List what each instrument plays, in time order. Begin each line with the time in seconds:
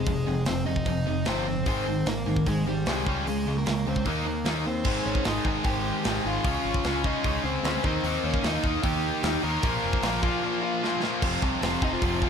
Already playing: overdriven electric guitar G#3 G#4
0.06 picked electric bass F1, distorted electric guitar F2 C3, kick, open hi-hat
0.27 picked electric bass F1, distorted electric guitar F2 C3
0.46 picked electric bass F1, distorted electric guitar F2 C3, overdriven electric guitar C4 C5, snare, open hi-hat
0.66 picked electric bass F1, distorted electric guitar F2 C3, overdriven electric guitar D#4 D#5
0.76 kick
0.86 picked electric bass F1, distorted electric guitar F2 C3, kick, open hi-hat
1.06 distorted electric guitar F2 C3
1.25 picked electric bass G1, distorted electric guitar F2 C3 F3, overdriven electric guitar C4 C5, snare, open hi-hat
1.46 distorted electric guitar F2 C3
1.66 picked electric bass G#1, distorted electric guitar G#2 D#3 G#3, overdriven electric guitar C4 C5, kick, open hi-hat
1.86 picked electric bass G#1, distorted electric guitar G#2 D#3
2.06 picked electric bass G#1, distorted electric guitar G#2 D#3, overdriven electric guitar A#3 A#4, snare, open hi-hat
2.26 picked electric bass G#1, distorted electric guitar G#2 D#3
2.36 kick
2.46 picked electric bass G#1, distorted electric guitar G#2 D#3, overdriven electric guitar G#3 G#4, kick, open hi-hat
2.67 distorted electric guitar G#2 D#3, overdriven electric guitar G3 G4
2.86 picked electric bass C2, distorted electric guitar G#2 D#3 G#3, snare, open hi-hat
3.06 picked electric bass C#2, distorted electric guitar C#3 G#3 C#4, overdriven electric guitar G3 G4, kick
3.27 picked electric bass C#2, distorted electric guitar C#3 G#3, overdriven electric guitar G#3 G#4, open hi-hat
3.47 picked electric bass C#2, distorted electric guitar C#3 G#3
3.58 overdriven electric guitar A#3 A#4
3.66 picked electric bass C#2, distorted electric guitar C#3 G#3, snare, open hi-hat
3.87 picked electric bass C#2, distorted electric guitar C#3 G#3, overdriven electric guitar C4 C5
3.96 kick
4.05 picked electric bass D#2, distorted electric guitar D#3 A#3 D#4, overdriven electric guitar A#3 A#4, kick, open hi-hat
4.26 distorted electric guitar D#3 A#3
4.45 picked electric bass D#2, distorted electric guitar D#3 A#3 D#4, snare, open hi-hat
4.66 distorted electric guitar D#3 A#3, overdriven electric guitar C4 C5
4.84 picked electric bass G#1, distorted electric guitar G#2 D#3 G#3, kick, crash
5.06 picked electric bass G#1, overdriven electric guitar C#4 C#5
5.15 kick
5.25 picked electric bass G#1, distorted electric guitar G#2 D#3 G#3, overdriven electric guitar D#4 D#5, snare, open hi-hat
5.45 picked electric bass G#1, distorted electric guitar G#2 D#3 G#3, kick
5.64 picked electric bass G#1, distorted electric guitar G#2 D#3 G#3, overdriven electric guitar G4 G5, kick, open hi-hat
6.04 picked electric bass G#1, distorted electric guitar G#2 D#3 G#3, snare, open hi-hat
6.25 picked electric bass G#1, distorted electric guitar G#2 D#3 G#3, overdriven electric guitar F4 F5
6.44 picked electric bass C#2, distorted electric guitar C#3 G#3 C#4, kick, open hi-hat
6.65 picked electric bass G#1
6.74 kick
6.84 picked electric bass C#2, distorted electric guitar C#3 G#3 C#4, snare, open hi-hat
7.04 distorted electric guitar C#3 G#3 C#4, overdriven electric guitar D#4 D#5, kick
7.24 picked electric bass C#2, distorted electric guitar C#3 G#3 C#4, kick, open hi-hat
7.44 picked electric bass C#2, overdriven electric guitar C4 C5
7.64 picked electric bass D2, distorted electric guitar C#3 G#3 C#4, snare, open hi-hat
7.84 picked electric bass D#2, distorted electric guitar D#3 A#3 D#4, overdriven electric guitar C4 C5, kick
8.03 picked electric bass D#2, distorted electric guitar D#3 A#3 D#4, open hi-hat
8.24 picked electric bass D#2, overdriven electric guitar C#4 C#5
8.34 kick
8.43 picked electric bass D#2, distorted electric guitar D#3 A#3 D#4, overdriven electric guitar D#4 D#5, snare, open hi-hat
8.63 picked electric bass D#2, distorted electric guitar D#3 A#3 D#4, kick
8.83 picked electric bass D#2, distorted electric guitar D#3 A#3 D#4, overdriven electric guitar G4 G5, kick, open hi-hat
9.23 picked electric bass D#2, distorted electric guitar D#3 A#3 D#4, snare, open hi-hat
9.44 picked electric bass D#2, distorted electric guitar D#3 A#3 D#4, overdriven electric guitar A#4 A#5
9.63 picked electric bass A#1, distorted electric guitar A#2 F3 A#3, kick, open hi-hat
9.84 picked electric bass F1
9.93 kick
10.03 picked electric bass A#1, distorted electric guitar A#2 F3 A#3, snare, open hi-hat
10.23 distorted electric guitar A#2 F3 A#3, overdriven electric guitar F4 F5, kick
10.43 distorted electric guitar A#2 F3 A#3
10.63 overdriven electric guitar F4 F5
10.83 distorted electric guitar A#2 F3 A#3, snare
11.02 distorted electric guitar A#2 F3 A#3, snare
11.22 picked electric bass F1, distorted electric guitar F2 C3 F3, kick, crash
11.42 picked electric bass C2, distorted electric guitar F2 C3 F3, kick
11.62 picked electric bass F1, distorted electric guitar F2 C3 F3, snare, open hi-hat
11.82 picked electric bass F1, distorted electric guitar F2 C3 F3, overdriven electric guitar D#4 D#5, kick
11.93 overdriven electric guitar F4 F5
12.02 picked electric bass F1, distorted electric guitar F2 C3 F3, kick, open hi-hat
12.22 distorted electric guitar F2 C3 F3, kick